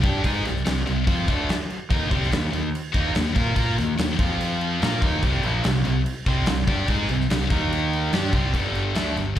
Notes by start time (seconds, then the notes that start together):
0.02 G2 G3 D4 G4, kick, crash
0.22 G#2 G#3 D#4 G#4, kick, crash
0.44 C2 C3 G3, snare, crash
0.56 snare
0.65 C2 C3 G3, snare, crash
0.86 C2 C3 G3, crash
1.07 F2 F3 C4 F4, kick, crash
1.28 D2 D3 A3 D4, kick, crash
1.49 snare, crash
1.70 crash
1.91 D#2 D#3 A#3 D#4, kick, crash
2.11 C2 C3 G3 C4, kick, crash
2.23 snare
2.31 D#2 D#3 A#3, snare, crash
2.51 D#2 D#3 A#3, crash
2.75 crash
2.92 D#2 D#3 A#3 D#4, kick, crash
3.13 D#2 D#3 A#3, snare, crash
3.35 A#2 A#3 F4 A#4, kick, crash
3.55 A#2 A#3 F4 A#4, kick, crash
3.76 D#2 D#3 A#3, snare, crash
3.98 D#2 D#3 A#3, snare, crash
4.19 F2 F3 C4 F4, kick, crash
4.40 crash
4.61 crash
4.82 A#2 A#3 F4 A#4, snare, crash
5.02 D#2 D#3 A#3 D#4, kick, crash
5.23 C2 C3 G3 C4, kick, crash
5.43 A#1 A#2 F3 A#3, crash
5.64 C2 C3 G3, snare, crash
5.84 C2 C3 G3, crash
6.06 crash
6.26 C2 C3 G3 C4, kick, crash
6.46 C2 C3 G3, snare, crash
6.67 G2 G3 D4 G4, kick, crash
6.88 G#2 G#3 D#4 G#4, kick, crash
7.09 C2 C3 G3, crash
7.21 snare
7.30 C2 C3 G3, snare, crash
7.50 D#2 D#3 A#3 D#4, kick, crash
7.72 crash
7.93 crash
8.12 G2 G3 D4 G4, snare, crash
8.33 C2 C3 G3 C4, kick, crash
8.54 G1 G2 D3 G3, kick, crash
8.75 ride
8.94 D2 D3 A3 D4, snare, ride
9.16 G1 G2 D3, ride
9.35 G2